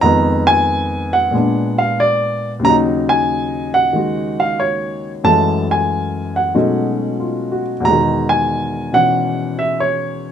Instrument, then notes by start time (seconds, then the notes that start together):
grand piano
0.01 F2 D#3 G#3 B3 A#5
0.47 G#5
1.13 F#5
1.31 A#2 G#3 B3
1.36 D4
1.78 F5
2.00 D5
2.59 D#2 C#3
2.65 F#3 A#5
2.70 D#4
3.09 G#5
3.74 F#5
3.93 D#3 G#3 F#4
4.40 F5
4.60 C#5
5.24 F#2 E3 G#3 A3 A5
5.71 G#5
6.36 F#5
6.55 B2 F#3 G#3 A3 C#4 D#4
7.20 F4
7.52 F#4
7.80 E2 B2
7.85 G#3 A#5
7.91 D#3
8.29 G#5
8.92 B2 E3 C#4 F#5
9.59 E5
9.80 C#5